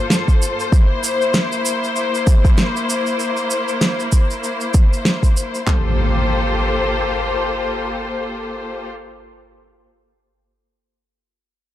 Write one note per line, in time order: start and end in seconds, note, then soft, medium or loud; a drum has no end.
0.00 0.68 G2 medium
0.00 0.68 A#3 medium
0.00 0.68 F4 medium
0.00 0.68 A4 medium
0.00 5.63 C5 medium
0.10 snare loud
0.10 shaker medium
0.28 kick medium
0.28 shaker soft
0.42 shaker medium
0.60 shaker soft
0.72 5.63 A#3 medium
0.72 5.63 E4 medium
0.72 kick loud
0.72 shaker soft
1.04 shaker medium
1.22 shaker soft
1.34 snare loud
1.34 shaker soft
1.52 shaker soft
1.65 shaker medium
1.84 shaker soft
1.96 shaker soft
2.15 shaker soft
2.27 kick loud
2.27 shaker medium
2.45 kick medium
2.45 shaker soft
2.58 snare loud
2.58 shaker soft
2.76 shaker soft
2.90 shaker medium
3.06 shaker soft
3.20 shaker soft
3.37 shaker soft
3.51 shaker medium
3.68 shaker soft
3.81 snare loud
3.81 shaker soft
4.00 shaker soft
4.12 kick medium
4.12 shaker medium
4.31 shaker soft
4.44 shaker soft
4.61 shaker soft
4.74 kick loud
4.74 shaker medium
4.93 shaker soft
5.05 snare loud
5.05 shaker soft
5.23 kick medium
5.23 shaker soft
5.37 shaker medium
5.55 shaker soft
5.67 8.90 A#3 medium
5.67 8.90 F4 medium
5.67 8.90 G4 medium
5.67 8.90 A4 medium
5.67 8.90 C5 medium
5.67 kick medium
5.67 clap medium
5.67 impact medium